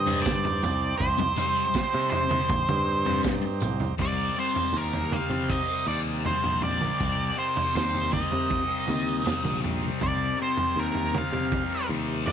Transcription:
Already playing: G2 C4 D#4 G4 C5 D#5
0.06 C3 G3 C4, floor tom
0.22 D5, kick, mid tom, tambourine
0.27 snare
0.44 muted distorted electric guitar stroke, floor tom
0.62 C2, floor tom, tambourine
0.98 C2 C5, kick, floor tom, tambourine
1.18 muted distorted electric guitar stroke, floor tom, tambourine
1.36 C3 G3 C4, floor tom, tambourine
1.55 tambourine
1.73 muted distorted electric guitar stroke, kick, snare, tambourine
1.93 C3 G3 C4, tambourine
2.11 C5, floor tom
2.29 C3 G3 C4, floor tom, mid tom, tambourine
2.48 A#1, muted distorted electric guitar stroke, kick, floor tom, mid tom, tambourine
2.67 G2, floor tom, mid tom, tambourine
3.05 C3 G3 C4, floor tom
3.23 kick, snare, tambourine
3.42 muted distorted electric guitar stroke, tambourine
3.60 C2, mid tom, tambourine
3.79 floor tom, tambourine
3.98 C2 C3 G3 C4 D#4 G4 A#4 D5, kick, floor tom
4.36 C3 G3 C4 C5
4.55 G3 C4, floor tom
4.73 D#2 C3 G3 C4
4.78 A#4
4.93 floor tom
5.11 C3 G3 C4 F5, floor tom, mid tom
5.30 C3 G3 C4, floor tom
5.50 D#5, kick, floor tom
5.68 G3 C4
5.86 D#2 C3 G3 C4 D5
6.24 C3 G3 C4 C5, floor tom
6.43 A#1 G3 C4, floor tom
6.62 C3 G3 C4 D5, floor tom
6.80 G3 C4, mid tom
6.99 C2 C3 G3 C4, kick, floor tom
7.36 C3 G3 C4 C5
7.56 G3 C4, floor tom
7.74 D#2 C3 G3 C4 C5, snare, floor tom
7.95 floor tom
8.12 C3 G3 C4 D#5, kick, floor tom, mid tom
8.31 C3 G3 C4, floor tom
8.50 kick, floor tom
8.68 G3 C4
8.86 D#2 C3 G3 C4, mid tom
9.24 C3 G3 C4, snare, floor tom
9.43 A#1 G3 C4, mid tom
9.62 C3 G3 C4, floor tom
9.83 G3 C4
10.01 C2 C3 G3 C4 D5, kick, floor tom
10.37 C3 G3 C4
10.42 C5
10.57 G3 C4, floor tom
10.75 D#2 C3 G3 C4
10.79 A#4
10.95 floor tom
11.13 C3 G3 C4, floor tom, mid tom
11.18 F5
11.33 C3 G3 C4, floor tom
11.52 kick, floor tom
11.70 G3 C4
11.89 D#2 C3 G3 C4
12.26 C3 G3 C4 D#5, floor tom

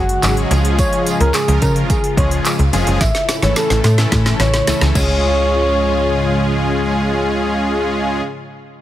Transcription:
Already playing: F#1 C#3 G#3 F#4
0.09 closed hi-hat
0.23 G#1 F#3 G#3 C#4 F#4 G#4, clap, closed hi-hat, tambourine
0.37 closed hi-hat
0.51 C#2 F3 G#3 C#4 F4 G#4, closed hi-hat, tambourine
0.65 closed hi-hat
0.79 C#5, kick, closed hi-hat, tambourine
0.93 closed hi-hat
1.06 closed hi-hat, tambourine
1.20 C#2 A#4, closed hi-hat
1.34 G#4, clap, closed hi-hat, tambourine
1.48 C#2 F3 G#3 C#4 F4 A#4, closed hi-hat
1.62 C#3 A#4, kick, closed hi-hat, tambourine
1.76 closed hi-hat
1.90 G#4, kick, closed hi-hat, tambourine
2.04 closed hi-hat
2.17 C#2 F3 G#3 C#4 F4 G#4 C#5, kick, closed hi-hat
2.31 closed hi-hat
2.45 clap, closed hi-hat, tambourine
2.59 C#2, closed hi-hat
2.73 F1 F3 G#3 C#4 F4 G#4, closed hi-hat, tambourine
2.87 F#1, closed hi-hat
3.01 A1 A3 E4 E5, kick, snare, closed hi-hat, tambourine
3.15 snare, closed hi-hat
3.29 snare, closed hi-hat, tambourine
3.42 G#1 E3 A3 C#4 E4 A4 C#5, snare, closed hi-hat
3.56 A4, snare, closed hi-hat, tambourine
3.70 A1, snare, closed hi-hat
3.84 A2 A4, snare, closed hi-hat, tambourine
3.98 E3 A3 C#4 E4 A4, snare, closed hi-hat
4.12 A2, kick, snare, closed hi-hat, tambourine
4.26 snare, closed hi-hat
4.40 A1 C#5, snare, closed hi-hat, tambourine
4.54 snare, closed hi-hat
4.67 C#2 E3 A3 C#4 E4 A4, snare, closed hi-hat, tambourine
4.81 C#2, snare, closed hi-hat
4.95 C#2 C#3 G#3 C#4 F4 G#4 C#5, kick, crash, tambourine

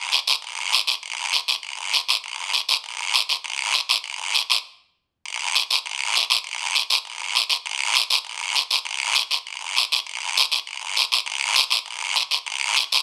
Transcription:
0.12 short guiro
0.27 short guiro
0.42 long guiro
0.73 short guiro
0.87 short guiro
1.03 long guiro
1.33 short guiro
1.48 short guiro
1.63 long guiro
1.94 short guiro
2.09 short guiro
2.24 long guiro
2.54 short guiro
2.69 short guiro
2.84 long guiro
3.14 short guiro
3.29 short guiro
3.44 long guiro
3.74 short guiro
3.89 short guiro
4.04 long guiro
4.35 short guiro
4.50 short guiro
5.26 long guiro
5.55 short guiro
5.70 short guiro
5.86 long guiro
6.16 short guiro
6.30 short guiro
6.44 long guiro
6.75 short guiro
6.90 short guiro
7.05 long guiro
7.35 short guiro
7.50 short guiro
7.66 long guiro
7.95 short guiro
8.10 short guiro
8.25 long guiro
8.56 short guiro
8.71 short guiro
8.85 long guiro
9.15 short guiro
9.31 short guiro
9.47 long guiro
9.77 short guiro
9.92 short guiro
10.07 long guiro
10.37 short guiro
10.52 short guiro
10.67 long guiro
10.97 short guiro
11.12 short guiro
11.26 long guiro
11.56 short guiro
11.71 short guiro
11.86 long guiro
12.16 short guiro
12.31 short guiro
12.46 long guiro
12.76 short guiro
12.92 short guiro

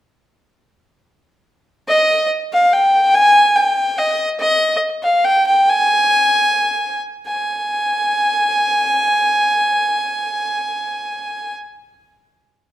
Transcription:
1.88 D#5
2.53 F5
2.73 G5
3.14 G#5
3.56 G5
3.98 D#5
4.40 D#5
5.03 F5
5.24 G5
5.47 G5
5.70 G#5
7.27 G#5

